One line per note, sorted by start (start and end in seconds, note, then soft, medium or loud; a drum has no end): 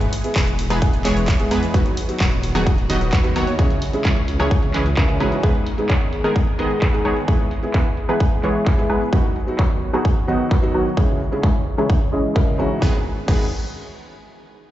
0.00 0.11 G#3 medium
0.00 0.12 B3 medium
0.00 0.12 E4 medium
0.00 0.12 G#4 medium
0.00 closed hi-hat soft
0.00 shaker soft
0.13 open hi-hat loud
0.24 0.38 G#3 medium
0.24 0.38 B3 medium
0.24 0.38 E4 medium
0.24 0.38 G#4 medium
0.24 closed hi-hat soft
0.24 shaker medium
0.36 0.68 E1 loud
0.36 0.48 E3 loud
0.36 0.48 G#3 medium
0.36 0.48 B3 medium
0.36 0.48 G#4 medium
0.36 0.48 B4 loud
0.36 kick loud
0.36 clap loud
0.36 closed hi-hat medium
0.36 shaker medium
0.47 closed hi-hat soft
0.47 shaker soft
0.59 open hi-hat loud
0.70 1.03 E1 loud
0.70 1.02 E3 medium
0.70 0.84 G#3 medium
0.70 1.02 G#3 medium
0.70 0.84 B3 medium
0.70 1.02 B3 medium
0.70 0.84 E4 medium
0.70 1.02 G#4 medium
0.70 0.85 G#4 medium
0.70 1.02 B4 medium
0.70 closed hi-hat soft
0.70 high woodblock medium
0.70 shaker medium
0.82 kick loud
0.82 closed hi-hat medium
0.82 shaker medium
0.93 closed hi-hat soft
0.93 shaker soft
1.05 1.49 E1 loud
1.05 1.48 E3 loud
1.05 1.27 G#3 medium
1.05 1.48 G#3 medium
1.05 1.27 B3 medium
1.05 1.48 B3 medium
1.05 1.27 E4 medium
1.05 1.48 G#4 medium
1.05 1.28 G#4 loud
1.05 1.48 C#5 loud
1.05 clap medium
1.05 open hi-hat loud
1.17 closed hi-hat soft
1.17 shaker medium
1.28 kick loud
1.28 clap loud
1.28 closed hi-hat medium
1.28 shaker medium
1.39 1.61 G#3 medium
1.39 1.62 B3 medium
1.39 1.62 E4 medium
1.39 1.62 G#4 loud
1.39 closed hi-hat soft
1.39 shaker soft
1.51 1.72 E2 loud
1.51 1.72 E3 medium
1.51 1.72 G#3 medium
1.51 1.72 B3 medium
1.51 1.72 G#4 medium
1.51 1.72 B4 loud
1.51 open hi-hat loud
1.51 high woodblock medium
1.63 closed hi-hat soft
1.63 shaker medium
1.74 1.84 D#1 loud
1.74 1.87 D#3 medium
1.74 1.96 F#3 medium
1.74 1.87 F#3 medium
1.74 1.96 B3 medium
1.74 1.87 B3 medium
1.74 1.96 D#4 medium
1.74 1.87 F#4 medium
1.74 1.97 F#4 medium
1.74 1.87 B4 loud
1.74 kick loud
1.74 closed hi-hat medium
1.74 shaker soft
1.86 closed hi-hat soft
1.86 shaker soft
1.97 open hi-hat loud
2.08 2.22 F#3 medium
2.08 2.23 B3 medium
2.08 2.23 D#4 medium
2.08 2.23 F#4 medium
2.08 closed hi-hat soft
2.08 shaker medium
2.20 2.53 D#1 loud
2.20 2.52 D#3 medium
2.20 2.52 F#3 medium
2.20 2.52 B3 medium
2.20 2.52 F#4 medium
2.20 2.52 C#5 medium
2.20 kick loud
2.20 clap loud
2.20 closed hi-hat medium
2.20 shaker medium
2.32 closed hi-hat soft
2.32 shaker soft
2.43 open hi-hat loud
2.55 2.87 D#1 loud
2.55 2.67 D#3 loud
2.55 2.69 F#3 medium
2.55 2.67 F#3 medium
2.55 2.67 B3 medium
2.55 2.69 B3 medium
2.55 2.69 D#4 medium
2.55 2.67 F#4 medium
2.55 2.69 F#4 medium
2.55 2.67 G#4 loud
2.55 closed hi-hat soft
2.55 high woodblock medium
2.55 shaker medium
2.67 kick loud
2.67 closed hi-hat medium
2.67 shaker medium
2.78 closed hi-hat soft
2.78 shaker soft
2.89 3.10 D#1 loud
2.89 3.10 D#3 loud
2.89 3.11 F#3 medium
2.89 3.10 F#3 medium
2.89 3.12 B3 medium
2.89 3.10 B3 medium
2.89 3.12 D#4 medium
2.89 3.10 F#4 medium
2.89 3.12 F#4 medium
2.89 3.10 D#5 loud
2.89 open hi-hat loud
3.01 closed hi-hat soft
3.01 shaker medium
3.13 3.33 D#2 loud
3.13 3.33 D#3 medium
3.13 3.33 F#3 medium
3.13 3.33 B3 medium
3.13 3.33 F#4 medium
3.13 3.33 B4 medium
3.13 kick loud
3.13 clap loud
3.13 closed hi-hat medium
3.13 shaker medium
3.24 3.46 F#3 medium
3.24 3.46 B3 medium
3.24 3.46 D#4 medium
3.24 3.47 F#4 loud
3.24 closed hi-hat soft
3.24 shaker soft
3.36 3.57 D#2 medium
3.36 3.56 D#3 medium
3.36 3.56 F#3 medium
3.36 3.56 B3 medium
3.36 3.56 F#4 medium
3.36 3.56 C#5 loud
3.36 open hi-hat loud
3.36 high woodblock medium
3.47 closed hi-hat soft
3.47 shaker medium
3.58 3.76 C#2 loud
3.58 3.81 C#3 medium
3.58 3.79 E3 medium
3.58 3.81 G#3 medium
3.58 3.79 G#3 medium
3.58 3.81 C#4 medium
3.58 3.79 C#4 medium
3.58 3.81 E4 medium
3.58 3.79 G#4 medium
3.58 3.81 G#4 medium
3.58 3.78 C#5 medium
3.58 kick loud
3.58 closed hi-hat medium
3.58 shaker medium
3.70 closed hi-hat soft
3.70 shaker soft
3.82 open hi-hat loud
3.93 4.07 C#3 medium
3.93 4.07 G#3 medium
3.93 4.07 C#4 medium
3.93 4.07 E4 medium
3.93 4.08 G#4 medium
3.93 closed hi-hat soft
3.93 shaker medium
4.05 4.37 C#2 loud
4.05 4.17 E3 loud
4.05 4.17 G#3 medium
4.05 4.17 C#4 medium
4.05 4.17 G#4 medium
4.05 4.17 C#5 loud
4.05 kick loud
4.05 clap loud
4.05 closed hi-hat medium
4.05 shaker medium
4.17 closed hi-hat soft
4.17 shaker soft
4.28 open hi-hat loud
4.39 4.72 C#2 loud
4.39 4.53 C#3 medium
4.39 4.72 E3 medium
4.39 4.53 G#3 medium
4.39 4.72 G#3 medium
4.39 4.72 C#4 medium
4.39 4.54 C#4 medium
4.39 4.54 E4 medium
4.39 4.72 G#4 medium
4.39 4.54 G#4 medium
4.39 4.72 C#5 medium
4.39 closed hi-hat soft
4.39 high woodblock medium
4.39 shaker medium
4.51 kick loud
4.51 closed hi-hat medium
4.51 shaker medium
4.63 closed hi-hat soft
4.63 shaker soft
4.74 4.95 C#2 loud
4.74 4.87 E3 medium
4.74 4.87 G#3 medium
4.74 4.87 C#4 medium
4.74 4.87 G#4 medium
4.74 4.87 B4 medium
4.74 clap medium
4.74 open hi-hat loud
4.86 closed hi-hat soft
4.86 shaker medium
4.97 5.18 C#2 loud
4.97 5.17 C#3 loud
4.97 5.17 E3 medium
4.97 5.18 G#3 medium
4.97 5.17 G#3 medium
4.97 5.17 C#4 medium
4.97 5.18 C#4 medium
4.97 5.18 E4 medium
4.97 5.17 G#4 medium
4.97 5.18 A#4 loud
4.97 5.17 B4 medium
4.97 kick loud
4.97 clap loud
4.97 closed hi-hat medium
5.09 closed hi-hat soft
5.09 shaker soft
5.20 5.41 C#2 medium
5.20 5.40 G#2 medium
5.20 5.41 E3 medium
5.20 5.41 G#3 medium
5.20 5.41 C#4 medium
5.20 5.41 E4 medium
5.20 5.41 F#4 loud
5.20 5.41 G#4 medium
5.20 5.41 B4 medium
5.20 open hi-hat loud
5.20 high woodblock medium
5.32 closed hi-hat soft
5.32 shaker medium
5.43 5.65 G#2 medium
5.43 5.56 D#3 medium
5.43 5.65 G#3 medium
5.43 5.56 G#3 medium
5.43 5.56 B3 medium
5.43 5.66 B3 medium
5.43 5.66 D#4 medium
5.43 5.56 G#4 medium
5.43 5.66 G#4 medium
5.43 5.56 B4 loud
5.43 kick loud
5.43 closed hi-hat medium
5.43 shaker medium
5.55 closed hi-hat soft
5.55 shaker soft
5.67 open hi-hat loud
5.78 5.92 G#2 medium
5.78 5.92 G#3 medium
5.78 5.92 B3 medium
5.78 5.92 D#4 medium
5.78 5.92 G#4 medium
5.78 closed hi-hat soft
5.78 shaker medium
5.90 6.22 D#3 medium
5.90 6.22 G#3 medium
5.90 6.22 B3 medium
5.90 6.22 G#4 medium
5.90 6.22 C#5 medium
5.90 kick loud
5.90 clap loud
5.90 closed hi-hat medium
6.01 closed hi-hat soft
6.01 shaker soft
6.13 open hi-hat loud
6.24 6.38 G#2 medium
6.24 6.37 D#3 loud
6.24 6.38 G#3 medium
6.24 6.37 G#3 medium
6.24 6.37 B3 medium
6.24 6.38 B3 medium
6.24 6.38 D#4 medium
6.24 6.37 G#4 medium
6.24 6.38 G#4 medium
6.24 6.37 A#4 loud
6.24 closed hi-hat soft
6.24 high woodblock medium
6.24 shaker medium
6.36 kick loud
6.36 closed hi-hat medium
6.36 shaker medium
6.47 closed hi-hat soft
6.47 shaker soft
6.58 6.81 G#2 medium
6.58 6.79 D#3 loud
6.58 6.81 G#3 medium
6.58 6.79 G#3 medium
6.58 6.81 B3 medium
6.58 6.79 B3 medium
6.58 6.81 D#4 medium
6.58 6.79 G#4 medium
6.58 6.81 G#4 loud
6.58 6.79 D#5 loud
6.58 open hi-hat loud
6.70 closed hi-hat soft
6.70 shaker medium
6.82 7.02 D#3 medium
6.82 7.02 G#3 medium
6.82 7.02 B3 medium
6.82 7.02 G#4 medium
6.82 7.02 B4 medium
6.82 kick loud
6.82 clap loud
6.82 closed hi-hat medium
6.93 7.15 G#2 medium
6.93 7.15 G#3 medium
6.93 7.16 B3 medium
6.93 7.16 D#4 medium
6.93 7.16 G#4 loud
6.93 closed hi-hat soft
7.05 7.25 D#3 medium
7.05 7.25 G#3 medium
7.05 7.25 B3 medium
7.05 7.25 G#4 medium
7.05 7.25 C#5 loud
7.05 open hi-hat loud
7.05 high woodblock medium
7.17 closed hi-hat soft
7.17 shaker medium
7.28 7.48 E3 medium
7.28 7.50 G#3 medium
7.28 7.48 G#3 medium
7.28 7.50 B3 medium
7.28 7.48 B3 medium
7.28 7.50 E4 medium
7.28 7.48 G#4 medium
7.28 7.51 G#4 medium
7.28 7.48 B4 medium
7.28 kick loud
7.28 closed hi-hat medium
7.28 shaker medium
7.40 closed hi-hat soft
7.40 shaker soft
7.51 open hi-hat loud
7.62 7.76 G#3 medium
7.62 7.76 B3 medium
7.62 7.77 E4 medium
7.62 7.77 G#4 medium
7.62 closed hi-hat soft
7.62 shaker medium
7.74 7.87 E3 loud
7.74 7.87 G#3 medium
7.74 7.87 B3 medium
7.74 7.87 G#4 medium
7.74 7.87 B4 loud
7.74 kick loud
7.74 clap loud
7.86 closed hi-hat soft
7.86 shaker soft
7.97 open hi-hat loud
8.08 8.41 E3 medium
8.08 8.22 G#3 medium
8.08 8.41 G#3 medium
8.08 8.23 B3 medium
8.08 8.41 B3 medium
8.08 8.23 E4 medium
8.08 8.41 G#4 medium
8.08 8.23 G#4 medium
8.08 8.41 B4 medium
8.08 closed hi-hat soft
8.08 high woodblock medium
8.08 shaker medium
8.20 kick loud
8.20 closed hi-hat medium
8.20 shaker medium
8.32 closed hi-hat soft
8.32 shaker soft
8.43 8.87 E3 loud
8.43 8.65 G#3 medium
8.43 8.87 G#3 medium
8.43 8.66 B3 medium
8.43 8.87 B3 medium
8.43 8.66 E4 medium
8.43 8.87 G#4 medium
8.43 8.66 G#4 loud
8.43 8.87 C#5 loud
8.43 clap medium
8.43 open hi-hat loud
8.55 closed hi-hat soft
8.55 shaker medium
8.67 kick loud
8.67 clap loud
8.67 shaker medium
8.78 9.00 G#3 loud
8.78 9.00 B3 medium
8.78 9.00 E4 medium
8.78 9.01 G#4 loud
8.78 closed hi-hat soft
8.90 9.10 E3 medium
8.90 9.10 G#3 medium
8.90 9.10 B3 medium
8.90 9.10 G#4 medium
8.90 9.10 B4 loud
8.90 open hi-hat loud
8.90 high woodblock medium
9.01 closed hi-hat soft
9.01 shaker medium
9.12 9.25 D#3 medium
9.12 9.35 F#3 medium
9.12 9.25 F#3 medium
9.12 9.35 B3 medium
9.12 9.25 B3 medium
9.12 9.35 D#4 medium
9.12 9.25 F#4 medium
9.12 9.35 F#4 medium
9.12 9.25 B4 loud
9.12 kick loud
9.12 closed hi-hat loud
9.24 closed hi-hat soft
9.36 open hi-hat loud
9.47 9.61 F#3 medium
9.47 9.61 B3 medium
9.47 9.61 D#4 medium
9.47 9.61 F#4 medium
9.47 closed hi-hat soft
9.47 shaker medium
9.59 9.91 D#3 medium
9.59 9.91 F#3 medium
9.59 9.91 B3 medium
9.59 9.91 F#4 medium
9.59 9.91 C#5 medium
9.59 kick loud
9.59 clap loud
9.71 closed hi-hat soft
9.71 shaker soft
9.82 open hi-hat loud
9.93 10.06 D#3 loud
9.93 10.07 F#3 medium
9.93 10.06 F#3 medium
9.93 10.07 B3 medium
9.93 10.06 B3 medium
9.93 10.07 D#4 medium
9.93 10.06 F#4 medium
9.93 10.08 F#4 medium
9.93 10.06 G#4 loud
9.93 closed hi-hat soft
9.93 high woodblock medium
9.93 shaker medium
10.05 kick loud
10.17 closed hi-hat soft
10.17 shaker soft
10.27 10.48 D#3 loud
10.27 10.50 F#3 medium
10.27 10.48 F#3 loud
10.27 10.50 B3 medium
10.27 10.48 B3 medium
10.27 10.50 D#4 medium
10.27 10.48 F#4 medium
10.27 10.50 F#4 loud
10.27 10.48 D#5 loud
10.27 open hi-hat loud
10.40 closed hi-hat soft
10.40 shaker medium
10.51 10.71 D#3 medium
10.51 10.71 F#3 medium
10.51 10.72 B3 medium
10.51 10.71 F#4 medium
10.51 10.71 B4 medium
10.51 kick loud
10.51 clap loud
10.62 10.85 F#3 loud
10.62 10.85 B3 medium
10.62 10.85 D#4 medium
10.62 10.85 F#4 loud
10.62 closed hi-hat soft
10.62 shaker soft
10.74 10.95 D#3 medium
10.74 10.95 F#3 medium
10.74 10.95 B3 medium
10.74 10.95 F#4 medium
10.74 10.95 C#5 loud
10.74 open hi-hat loud
10.74 high woodblock medium
10.86 closed hi-hat soft
10.97 11.19 C#3 medium
10.97 11.17 E3 medium
10.97 11.19 G#3 medium
10.97 11.17 G#3 medium
10.97 11.19 C#4 medium
10.97 11.17 C#4 medium
10.97 11.20 E4 medium
10.97 11.17 G#4 medium
10.97 11.20 G#4 medium
10.97 11.17 C#5 medium
10.97 kick loud
11.09 closed hi-hat soft
11.20 open hi-hat loud
11.31 11.45 C#3 medium
11.31 11.46 G#3 medium
11.31 11.46 C#4 medium
11.31 11.46 E4 medium
11.31 11.46 G#4 medium
11.43 11.56 E3 loud
11.43 11.56 G#3 medium
11.43 11.56 C#4 medium
11.43 11.56 G#4 medium
11.43 11.56 C#5 loud
11.43 kick loud
11.43 clap loud
11.55 closed hi-hat soft
11.55 shaker soft
11.67 open hi-hat loud
11.77 11.92 C#3 medium
11.77 12.10 E3 medium
11.77 11.92 G#3 medium
11.77 12.10 G#3 medium
11.77 11.92 C#4 medium
11.77 12.10 C#4 medium
11.77 11.92 E4 medium
11.77 12.10 G#4 medium
11.77 11.92 G#4 medium
11.77 12.10 C#5 medium
11.77 high woodblock medium
11.77 shaker medium
11.90 kick loud
12.01 closed hi-hat soft
12.13 12.56 E3 loud
12.13 12.56 G#3 loud
12.13 12.56 C#4 medium
12.13 12.56 G#4 medium
12.13 12.56 D#5 loud
12.13 clap medium
12.13 open hi-hat loud
12.24 closed hi-hat soft
12.24 shaker medium
12.35 12.56 C#3 loud
12.35 12.56 G#3 medium
12.35 12.56 C#4 medium
12.35 12.56 E4 medium
12.35 12.56 A#4 loud
12.35 kick loud
12.35 clap loud
12.58 12.79 G#2 medium
12.58 12.79 E3 medium
12.58 12.79 G#3 medium
12.58 12.79 C#4 medium
12.58 12.79 E4 medium
12.58 12.79 F#4 loud
12.58 12.79 G#4 medium
12.58 12.79 C#5 loud
12.58 high woodblock medium
12.80 12.95 G#1 loud
12.80 12.95 D#3 medium
12.80 12.94 G#3 medium
12.80 12.95 G#3 medium
12.80 12.95 B3 medium
12.80 12.95 D#4 medium
12.80 12.95 G#4 medium
12.80 12.96 G#4 medium
12.80 12.95 B4 medium
12.80 kick loud
12.80 snare medium
13.26 13.50 G#1 loud
13.26 13.45 D#3 medium
13.26 13.44 G#3 medium
13.26 13.45 G#3 medium
13.26 13.45 B3 medium
13.26 13.46 D#4 medium
13.26 13.45 G#4 medium
13.26 13.46 G#4 medium
13.26 13.45 B4 medium
13.26 kick loud
13.26 crash medium